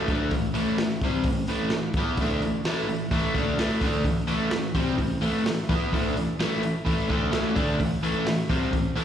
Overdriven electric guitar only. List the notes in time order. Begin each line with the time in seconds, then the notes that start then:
0.10 D3 A3 D4
0.34 A2 E3
0.54 A2 E3 A3
0.80 A2 E3
1.04 C3 G3 C4
1.27 A2 E3
1.48 A2 E3 A3
1.73 A2 E3
1.97 E3 B3 E4
2.21 D3 A3 D4
2.43 A2 E3
2.67 A2 E3 A3
2.88 A2 E3
3.12 A2 E3 A3
3.36 D3 A3 D4
3.58 A2 E3 A3
3.82 D3 A3 D4
4.05 A2 E3
4.27 A2 E3 A3
4.52 A2 E3
4.75 C3 G3 C4
4.98 A2 E3
5.21 A2 E3 A3
5.46 A2 E3
5.69 E3 B3 E4
5.93 D3 A3 D4
6.16 A2 E3
6.40 A2 E3 A3
6.63 A2 E3
6.85 A2 E3 A3
7.09 D3 A3 D4
7.31 A2 E3 A3
7.55 D3 A3 D4
7.79 A2 E3
8.03 A2 E3 A3
8.26 A2 E3
8.50 C3 G3 C4
8.73 A2 E3
8.96 A2 E3 A3